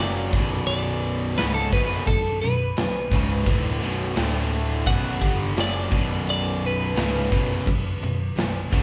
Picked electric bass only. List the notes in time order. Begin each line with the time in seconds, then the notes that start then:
Already playing: F#1
0.33 B0
1.38 C#1
1.73 B0
2.07 B0
2.42 B0
2.76 B0
3.12 C#1
3.47 D1
3.81 B0
4.17 D1
4.86 B0
5.21 G1
5.56 F#1
5.92 B0
6.96 C#1
7.32 B0
7.68 B0
8.01 B0
8.36 B0
8.73 C#1